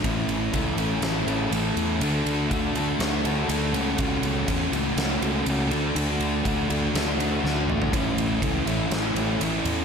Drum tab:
RD |x-x-x-x-x-x-x-x-|x-x-x-x-x-x-x-x-|x-x-x-x-x-x-x-x-|x-x-x-x-x-x-----|
SD |--------o-------|--------o-------|--------o-------|--------o---o---|
T2 |----------------|----------------|----------------|--------------o-|
FT |----------------|----------------|----------------|---------------o|
BD |o---o-----------|----o-----------|o---o-----------|----o-----------|

RD |x-x-x-x-x-x-x-x-|
SD |--------o-------|
T2 |----------------|
FT |----------------|
BD |o---o-----------|